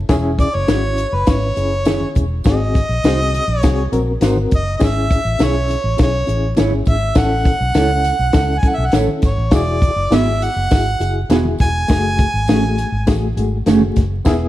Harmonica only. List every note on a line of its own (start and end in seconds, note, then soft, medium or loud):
0.40 0.56 D5 loud
0.54 1.16 C#5 medium
1.14 1.31 B4 medium
1.29 2.17 C#5 medium
2.46 3.60 D#5 loud
3.60 4.18 C#5 loud
4.55 4.76 D#5 medium
4.76 4.87 D#5 medium
4.85 5.45 E5 loud
5.43 6.01 C#5 medium
6.02 6.55 C#5 medium
6.88 7.15 E5 medium
7.17 8.60 F#5 loud
8.58 8.70 G#5 medium
8.68 8.77 F#5 medium
8.76 8.87 E5 medium
8.85 8.94 F#5 medium
9.25 9.56 C#5 medium
9.54 10.16 D5 medium
10.15 10.45 E5 medium
10.43 11.31 F#5 loud
11.61 13.34 G#5 loud